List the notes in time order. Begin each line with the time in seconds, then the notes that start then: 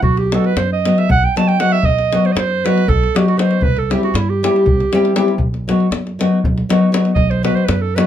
0.02 B1 F#4, davul low
0.17 G4, davul high
0.32 F#3 B3 D#4 F#4 A4, davul high
0.44 B4, davul high
0.56 F#2 C5, davul high
0.73 D#5
0.85 F#3 B3 D#4 F#4, davul high
0.98 E5, davul high
1.09 B1 F#5, davul low
1.23 G5, davul high
1.36 F#3 B3 D#4 F#4 A5, davul high
1.48 G5, davul high
1.59 F#3 B3 D#4 F#4 F#5, davul high
1.72 E5, davul high
1.83 B1 D#5, davul low
1.99 davul high
2.12 F#3 B3 D#4 F#4, davul high
2.25 C5, davul high
2.32 F#2 D#5
2.37 C5, davul high
2.64 F#3 B3 D#4 F#4 B4, davul high
2.78 davul high
2.88 B1 A4, davul low
3.03 davul high
3.15 F#3 B3 D#4 F#4 G4, davul high
3.28 F#4, davul high
3.37 F#3 B3 D#4 F#4 C5, davul high
3.51 davul high
3.61 C2 B4, davul low
3.77 A4, davul high
3.90 G3 C4 E4 G4, davul high
4.03 F#4, davul high
4.14 G2 E4, davul high
4.29 G4
4.43 G3 C4 E4 G4, davul high
4.56 davul high
4.66 C2, davul low
4.80 davul high
4.92 G3 C4 E4 G4, davul high
5.05 davul high
5.16 G3 C4 E4 G4, davul high
5.28 davul high
5.38 B1, davul low
5.54 davul high
5.68 F#3 B3 D#4 F#4, davul high
5.80 davul high
5.91 F#2, davul high
6.07 davul high
6.19 F#3 B3 D#4 F#4, davul high
6.44 B1, davul low
6.58 davul high
6.69 F#3 B3 D#4 F#4, davul high
6.92 F#3 B3 D#4 F#4, davul high
7.05 davul high
7.15 B1 D#5, davul low
7.30 C5, davul high
7.43 F#3 B3 D#4 F#4 B4, davul high
7.55 C5, davul high
7.65 F#2 B4, davul high
7.81 A4
7.95 F#3 B3 D#4 F#4 B4, davul high